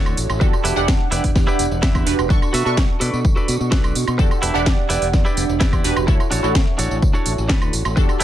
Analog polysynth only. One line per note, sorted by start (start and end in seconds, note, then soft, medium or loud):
0.00 0.38 E4 medium
0.00 0.38 F#4 medium
0.00 0.38 A4 medium
0.00 0.39 C#5 medium
0.41 0.74 D4 medium
0.41 0.74 F#4 medium
0.41 0.74 G4 medium
0.41 0.74 A4 loud
0.76 2.04 D4 loud
0.76 2.04 G4 loud
0.76 2.04 F#5 medium
2.06 2.27 D4 medium
2.06 2.27 F#4 medium
2.06 2.27 G4 medium
2.06 2.27 B4 medium
2.30 2.63 D4 medium
2.30 2.63 F#4 medium
2.30 2.63 A4 medium
2.30 2.63 C#6 loud
2.65 4.16 D4 medium
2.65 4.16 F#4 medium
2.65 4.16 A4 medium
2.65 4.17 C#6 medium
4.18 4.52 D4 medium
4.18 4.52 F#4 medium
4.18 4.52 G4 medium
4.18 4.52 A4 loud
4.54 5.82 D4 loud
4.54 5.82 G4 loud
4.54 5.82 D5 loud
4.54 5.82 F#5 medium
5.84 6.05 D4 medium
5.84 6.05 F#4 medium
5.84 6.05 G4 medium
5.84 6.05 B4 medium
6.07 6.41 E4 medium
6.07 6.41 F#4 medium
6.07 6.41 A4 medium
6.07 6.41 C#5 loud
6.43 7.94 E4 medium
6.43 7.94 F#4 medium
6.43 7.94 A4 medium
6.43 7.94 C#5 medium
7.97 8.24 D4 medium
7.97 8.24 F#4 medium
7.97 8.24 G4 medium
7.97 8.24 A4 loud